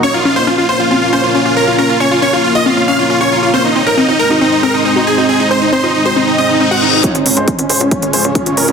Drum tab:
HH |----------------|----------------|----------------|----------------|
BD |----------------|----------------|----------------|----------------|

HH |xxoxxxoxxxoxxxox|
BD |o---o---o---o---|